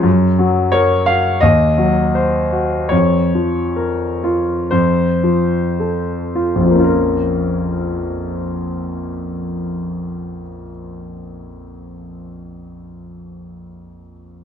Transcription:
0.03 F#2
0.39 F#3
0.72 A#4 C#5
1.06 F#4 F5
1.41 D#2 D#5
1.78 F#3
2.15 C5
2.53 F#4
2.89 F2 C#5
3.35 F3
3.76 A#4
4.24 F4
4.71 F2 C5
5.23 F3
5.80 A4
6.35 F4
6.55 A#1
6.61 F2
6.66 F3
6.70 A#3
6.75 C#4
6.80 F4
6.84 A#4

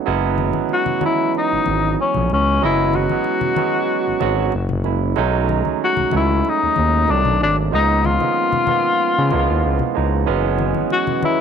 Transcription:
0.06 F#1 F#3 G#3 B3 C#4 E4
0.38 muted conga, high conga
0.53 G#1, high conga
0.69 muted conga
0.73 F#4
0.86 high conga, low conga
1.01 E3 F#3 G#3 B3 C#4, muted conga, high conga
1.05 E4
1.35 D#4, muted conga
1.53 G#1
1.66 G#1, high conga
2.01 C#4
2.14 A#1, low conga
2.30 C#2 C#4, muted conga
2.62 F#1 F#3 G#3 B3 C#4 E4 D#5
2.93 F#4, muted conga, high conga
3.10 G#1 F#3 G#3 B3 C#4 E4, high conga
3.24 muted conga
3.41 high conga, low conga
3.56 F#3 G#3 B3 C#4 F#4, muted conga, high conga
4.08 G#1
4.20 G#1 F#3 G#3 B3 C#4 F#4, muted conga, high conga
4.52 F#1, muted conga
4.69 F#1, low conga
4.84 F#1 F#3 G#3 A#3 C#4 E4, muted conga
5.16 B1 F#3 G#3 A3 C#4 D#4, muted conga
5.49 muted conga, high conga
5.65 C#2, high conga
5.84 F#4
5.97 C#2, high conga, low conga
6.11 C#2 F#3 G#3 A3 C#4 F#4, muted conga, high conga
6.16 E4
6.45 muted conga
6.49 D#4
6.63 D#2
6.76 D#2, muted conga, high conga
7.08 C2 D#3 F#3 A3 C4 D4, muted conga
7.25 B1, low conga
7.41 G#1 D4
7.71 C#2 F3 G#3 A#3 B3 D#4
8.04 F4, muted conga, high conga
8.20 C#3 F3 G#3 A#3 B3 C#4, high conga
8.52 high conga, low conga
8.67 F3 G#3 A#3 B3 F4, high conga, low conga
9.18 C#3
9.31 C#2 F3 G#3 A#3 B3 E4, high conga
9.39 F4
9.50 D#2
9.66 C#2
9.79 low conga
9.94 C#2 F3 G#3 A#3 B3 D#4
10.26 F#1 E3 F#3 G#3 B3 C#4 F#4
10.59 muted conga, high conga
10.75 G#1, high conga
10.90 F#4, muted conga
11.07 high conga, low conga
11.22 E3 F#3 G#3 B3 E4 F#4, muted conga, high conga

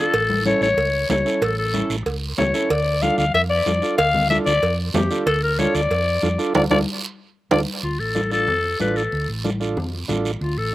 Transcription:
Already playing: D4 F4 A4
0.00 A4
0.14 A1, cowbell, long guiro
0.30 high conga
0.45 C#4 E4 A4 C#5, high conga, short guiro
0.61 A1 C#5, short guiro
0.77 C#2, cowbell, long guiro
1.09 C#2 C#4 E4 A4 C#5, high conga, low timbale, short guiro
1.25 C#4 E4 A4, short guiro
1.42 A1 A4, cowbell, long guiro
1.59 A4
1.73 C#4 E4 A4, high conga, short guiro
1.90 A1, short guiro
2.06 C#2, cowbell, long guiro
2.38 C#2 C#4 E4 A4 C#5, high conga, low conga, low timbale, short guiro
2.54 C#4 E4 A4, short guiro
2.70 D2 D5, cowbell, long guiro
3.02 D4 F4 A4 F5, high conga, short guiro
3.18 D2 F5, short guiro
3.34 F2 E5, cowbell, long guiro
3.50 D5
3.66 F2 D4 F4 A4, high conga, short guiro
3.82 D4 F4 A4, short guiro
3.98 D2 F5, cowbell, long guiro
4.14 high conga, low conga
4.30 D4 F4 A4 E5, high conga, short guiro
4.46 D2 D5, short guiro
4.63 F2, cowbell, long guiro
4.94 F2 D4 F4 G4 A4, high conga, low conga, low timbale, short guiro
5.10 D4 F4 A4, short guiro
5.26 D2 A4, cowbell, long guiro
5.43 A#4
5.59 D4 F4 A4 C#5, high conga, short guiro
5.75 D2 D5, short guiro
5.91 F2, cowbell, long guiro
6.22 F2 D4 F4 A4, high conga, short guiro
6.38 D4 F4 A4, short guiro
6.55 D2 D4 F4 A4 D5, high conga, high timbale, long guiro
6.71 D2 D4 F4 A4 D5, high conga, high timbale, long guiro
7.51 D2 D4 F4 A4 D5, high conga, high timbale, long guiro
7.83 D2 F4, high conga, long guiro
7.99 A1 A4
8.15 D4 F4 A4, high conga, short guiro
8.31 D4 F4 A4, short guiro
8.48 F2, high conga, low conga, long guiro
8.79 A1 D4 F4 A4 B4, high conga, short guiro
8.96 A4, short guiro
9.12 D2, high conga, long guiro
9.29 A1
9.44 D4 F4 A4, high conga, short guiro
9.60 D4 F4 A4, short guiro
9.77 F2, high conga, low conga, long guiro
10.08 A1 D4 F4 A4, high conga, low conga, short guiro
10.25 short guiro
10.41 D2 F4, high conga, long guiro
10.57 A1 A4

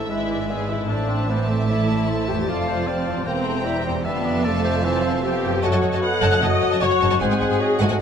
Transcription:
Already playing: G#2 A3 D4 A4 E5
0.01 E4
0.06 B4
0.10 G#1 G#2 G#3 E4 B4 D5 E5
0.30 D5
0.50 B3 G#4 E5 G#5
0.69 A2 G#3 E4 E5
0.76 C4
0.80 A4
0.85 C5
0.89 A1 A2 F3 A3 D4 C5 D5 E5 A5
1.09 C4
1.28 E3 B3 C4 C5 D5 E5
1.49 A3
1.68 A3 E4 E5
2.09 C5
2.28 F2 B3 G4 G5
2.34 C4
2.39 A4
2.43 A3 D5
2.47 F1 F2 A3 F4 D5 F5
2.68 C5
2.86 F3 G3 C4 C5 D5 F5
3.07 E2 F3
3.12 A#3
3.17 G4
3.21 C5
3.26 E1 E2 E3 A#3 C4 C5 G5 A#5
3.46 A3
3.65 G3 E4 E5 G5
3.85 F2 E3 C4 C5
3.91 A3
3.96 A4
4.00 E5
4.05 F1 F2 D3 G3 B3 B4 E5 F5 A5
4.25 D5
4.44 C3 F3 A3 A4 D5
4.64 C5
4.83 E3 C4 A4 C5
5.03 F3
5.23 B3 G4 A4 C5 G5
5.45 F#2
5.49 C#4
5.54 A4
5.58 C#5 D#5
5.62 F#1 F#2 A3 F#4 C#5 F#5 A5
5.72 F#2 C#5 D#5 A5
5.82 F#1 F#2 C#5 D#5 F#5
5.92 F#2 C#5 D#5 A5
6.01 B3 A4 D#5 F#5 F#6
6.21 F#1 F#2 A3 C#5 D#5 A5
6.31 F#2 C#5 D#5 A5
6.41 F#1 F#2 F#4 C#5 D#5 F#5 A5 D#6
6.61 F#1 F#2 C#5 F#5
6.71 F#2 C#5 D#5 A5
6.81 F#1 F#2 F#4 C#5 D#5 F#5 A5 C#6
6.90 F#2 C#5 F#5
7.00 F#1 F#2 G#2 C#5 D#5 A5
7.08 F#2 C4 C#5 D#5 A5
7.12 F#4
7.16 G#3 C4 D#5 F#5
7.21 G#1 G#2 G#4 C5 G#5
7.30 G#2 C5 F#5 G#5
7.40 G#1 G#2 C5 D#5 F#5
7.50 G#2 C5 F#5 G#5
7.59 F#3 D#5
7.80 G#1 G#2 A3 F#4 C5 F#5 G#5
7.90 G#2 C5 F#5 G#5

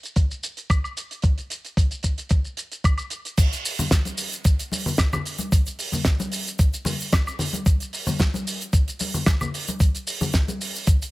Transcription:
0.03 closed hi-hat, shaker
0.16 kick, closed hi-hat, shaker
0.31 shaker
0.43 closed hi-hat, shaker
0.57 closed hi-hat, shaker
0.70 kick, closed hi-hat, high woodblock, shaker
0.84 high woodblock, shaker
0.97 closed hi-hat, shaker
1.11 closed hi-hat, shaker
1.22 kick, closed hi-hat, shaker
1.38 closed hi-hat, shaker
1.50 closed hi-hat, shaker
1.65 closed hi-hat, shaker
1.77 kick, closed hi-hat, shaker
1.91 closed hi-hat, shaker
2.03 kick, closed hi-hat, shaker
2.18 closed hi-hat, shaker
2.29 kick, closed hi-hat, shaker
2.45 shaker
2.57 closed hi-hat, shaker
2.72 closed hi-hat, shaker
2.84 kick, closed hi-hat, high woodblock, shaker
2.98 closed hi-hat, high woodblock, shaker
3.10 closed hi-hat, shaker
3.25 closed hi-hat, shaker
3.38 kick, closed hi-hat, crash, shaker
3.53 closed hi-hat, shaker
3.65 open hi-hat, shaker
3.79 high conga, low conga, shaker
3.91 kick, snare, closed hi-hat, shaker
4.05 closed hi-hat, high conga, shaker
4.17 open hi-hat, shaker
4.32 closed hi-hat, shaker
4.44 kick, closed hi-hat, shaker
4.46 shaker
4.59 closed hi-hat, shaker
4.72 open hi-hat, high conga, shaker
4.86 low conga, shaker
4.97 kick, snare, closed hi-hat, high woodblock, shaker
4.99 shaker
5.13 low conga, high woodblock, shaker
5.25 open hi-hat, shaker
5.38 closed hi-hat, high conga, shaker
5.40 shaker
5.52 kick, closed hi-hat, shaker
5.66 closed hi-hat, shaker
5.68 shaker
5.79 open hi-hat, shaker
5.92 high conga, low conga, shaker
5.94 shaker
6.05 kick, snare, closed hi-hat, shaker
6.07 shaker
6.19 closed hi-hat, high conga, shaker
6.21 shaker
6.32 open hi-hat, shaker
6.47 closed hi-hat, shaker
6.59 kick, closed hi-hat, shaker
6.60 shaker
6.73 closed hi-hat, shaker
6.85 open hi-hat, high conga, low conga, shaker
7.00 shaker
7.12 kick, snare, closed hi-hat, high woodblock, shaker
7.27 high woodblock, shaker
7.39 open hi-hat, low conga, shaker
7.53 closed hi-hat, high conga, shaker
7.55 shaker
7.66 kick, closed hi-hat, shaker
7.67 shaker
7.80 closed hi-hat, shaker
7.82 shaker
7.93 open hi-hat, shaker
8.07 high conga, low conga, shaker
8.19 kick, snare, closed hi-hat, shaker
8.21 shaker
8.34 closed hi-hat, high conga, shaker
8.47 open hi-hat, shaker
8.61 closed hi-hat, shaker
8.73 kick, closed hi-hat, shaker
8.74 shaker
8.88 closed hi-hat, shaker
8.99 open hi-hat, high conga, shaker
9.14 low conga, shaker
9.26 kick, snare, closed hi-hat, high woodblock, shaker
9.41 low conga, high woodblock, shaker
9.54 open hi-hat, shaker
9.68 closed hi-hat, high conga, shaker
9.80 kick, closed hi-hat, shaker
9.81 shaker
9.95 closed hi-hat, shaker
10.07 open hi-hat, shaker
10.21 high conga, low conga, shaker
10.23 shaker
10.33 kick, snare, closed hi-hat, shaker
10.35 shaker
10.48 closed hi-hat, high conga, shaker
10.61 open hi-hat, shaker
10.75 open hi-hat, shaker
10.87 kick, closed hi-hat, shaker
10.88 shaker
11.02 closed hi-hat, shaker

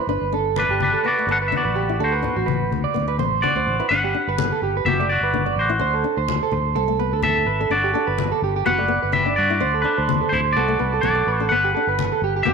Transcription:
0.07 G1 D4 B4, muted conga
0.21 G1
0.32 D4 A4, muted conga
0.56 D4 B4, high conga
0.69 G1 G4
0.80 D4 B4, high conga
0.94 A4
1.04 B3 F#4 B4, muted conga
1.08 D5
1.19 A3
1.27 G1 B3 B4
1.31 A4 F#5
1.42 B4
1.48 E5
1.52 D4, high conga
1.57 F#4 D5
1.65 A1 B4
1.76 G4, muted conga
1.89 E4
1.99 D2 D4 A4, muted conga
2.04 F#4 C5
2.12 B4
2.22 D4, muted conga, low conga
2.36 A1 F#4
2.46 B4, high conga
2.71 D2, high conga
2.84 D5
2.94 D2 B3, muted conga, low conga
3.08 B4, muted nylon-string guitar stroke
3.19 A1 B3 C5, high conga
3.42 D4 F#4 D5, high conga
3.56 D2 D4 C5
3.67 A1, muted conga
3.80 E4 B4
3.89 G1 D4 B4 F#5, muted conga
4.04 G4
4.15 D4
4.27 G1 B4
4.38 muted conga, high conga
4.52 A4
4.62 G1 G4
4.77 B4
4.85 F#1 B3 F#4 G4 E5, muted conga, high conga
5.00 A3 D5
5.09 F#4 D5, muted conga
5.21 G1 B4
5.34 D4, high conga
5.46 D5, muted nylon-string guitar stroke
5.56 A1 C5
5.61 F#4
5.69 E4
5.79 D2 D4 C5, muted conga
5.94 A4
6.04 D4
6.17 D2 C5
6.28 muted conga, high conga
6.43 A4
6.52 D2 C5, low conga
6.75 C2 B3 A4, muted conga
6.88 A3
6.99 B3 B4, muted conga
7.12 D2 A4
7.22 C4 A4 E5, high conga, low conga
7.37 C4
7.46 G#1 B4
7.61 D4 A4
7.70 G1 D4 F#4 D5, muted conga
7.84 G4
7.94 D4 A4
8.07 G1 B4
8.18 muted conga, high conga
8.32 A4
8.42 G1 G4
8.56 G4
8.66 F#1 B3 F#4 B4 F#5, muted conga, high conga
8.78 A3 D5
8.88 B3, muted conga
9.03 G1 B4
9.12 D4 G4 E5, high conga
9.26 D4 D5
9.36 G2 F#4 D5
9.50 E4
9.60 D2 D4 C5, muted conga
9.74 A4
9.82 D4 B4
9.98 D2 C5
10.09 muted conga, high conga
10.21 A4
10.29 D2 E4 C5, low conga
10.53 C2 F#4 A4 D5
10.57 B3, muted conga
10.68 A3
10.79 C2 B3 B4, muted conga
10.94 A4
11.01 B1 F#4 A4 D5, muted nylon-string guitar stroke, high conga, low conga
11.15 C4
11.27 A1 B4
11.40 D4 A4
11.49 G1 B3 B4 F#5, muted conga
11.64 G4
11.74 D4 A4
11.87 G1 B4
11.99 muted conga, high conga
12.12 A4
12.22 G1 G4
12.36 G4
12.43 F#1 B3 G4 E5, muted conga, high conga
12.47 F#4

